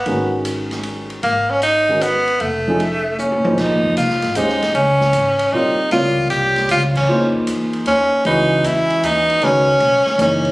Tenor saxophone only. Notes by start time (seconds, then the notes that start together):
Already playing: B3
1.23 A#3
1.50 C#4
1.63 D#4
2.02 B3
2.41 A3
3.19 C#4
3.59 D#4
3.97 F4
4.36 D#4
4.75 C#4
5.53 D#4
5.92 F4
6.30 G4
6.71 F4
6.97 C#4
7.87 C#4
8.26 D#4
8.66 E4
9.05 D#4
9.44 C#4
10.21 C#4